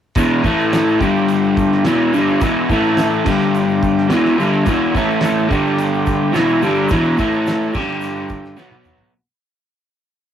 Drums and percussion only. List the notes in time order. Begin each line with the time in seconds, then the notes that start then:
0.15 kick, crash, shaker
0.44 kick, shaker
0.60 shaker
0.73 snare, crash, shaker
0.88 shaker
1.01 kick, shaker
1.16 shaker
1.28 crash, shaker
1.44 shaker
1.57 kick, shaker
1.72 snare
1.85 snare, crash, shaker
2.14 shaker
2.28 shaker
2.41 kick, crash, shaker
2.69 kick, shaker
2.85 shaker
2.97 snare, crash, shaker
3.26 kick, crash, shaker
3.41 shaker
3.54 crash, shaker
3.69 shaker
3.83 kick, shaker
3.98 snare
4.10 snare, crash, shaker
4.25 snare, shaker
4.40 shaker
4.53 shaker
4.66 kick, crash, shaker
4.95 kick, shaker
5.11 shaker
5.21 snare, crash, shaker
5.51 kick, shaker
5.66 shaker
5.78 crash, shaker
5.93 shaker
6.06 kick, shaker
6.34 snare, crash, shaker
6.48 shaker
6.62 shaker
6.75 shaker
6.89 kick, crash, shaker
7.04 shaker
7.18 kick, shaker
7.32 shaker
7.46 snare, crash, shaker
7.61 shaker
7.74 kick, shaker
7.89 shaker
8.01 crash, shaker
8.29 kick, shaker
8.44 snare, shaker
8.57 snare, shaker
8.71 high tom
8.84 mid tom, shaker
8.98 floor tom